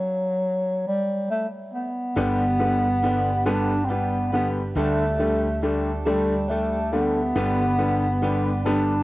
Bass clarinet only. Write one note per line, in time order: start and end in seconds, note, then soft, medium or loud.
0.00 0.87 F#3 medium
0.87 1.27 G3 medium
1.31 1.47 A3 medium
1.73 3.48 B3 loud
3.46 3.86 D4 loud
3.84 3.91 C4 medium
3.89 4.32 B3 medium
4.33 4.49 B3 medium
4.76 5.75 A3 medium
6.05 6.50 G3 medium
6.49 6.92 A3 medium
6.93 8.62 B3 loud
8.65 9.03 D4 loud